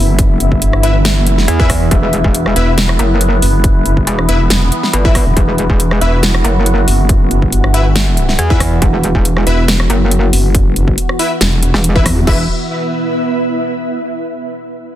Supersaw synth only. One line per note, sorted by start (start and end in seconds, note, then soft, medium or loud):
0.83 0.95 E4 medium
0.83 0.95 B4 medium
0.83 0.95 E5 medium
1.60 1.70 E4 medium
1.60 1.70 B4 medium
1.60 1.70 E5 medium
2.56 2.74 E4 medium
2.56 2.74 B4 medium
2.56 2.74 E5 loud
4.29 4.40 E4 medium
4.29 4.40 B4 medium
4.29 4.40 E5 medium
5.05 5.15 E4 medium
5.05 5.15 B4 medium
5.05 5.15 E5 medium
6.01 6.19 E4 medium
6.01 6.19 B4 medium
6.01 6.19 E5 loud
7.74 7.86 E4 medium
7.74 7.86 B4 medium
7.74 7.86 E5 medium
8.50 8.61 E4 medium
8.50 8.61 B4 medium
8.50 8.61 E5 medium
9.47 9.64 E4 medium
9.47 9.64 B4 medium
9.47 9.64 E5 loud
11.19 11.31 E4 medium
11.19 11.31 B4 medium
11.19 11.31 E5 medium
11.96 12.06 E4 medium
11.96 12.06 B4 medium
11.96 12.06 E5 medium
12.27 12.44 E4 medium
12.27 12.44 B4 medium
12.27 12.44 E5 loud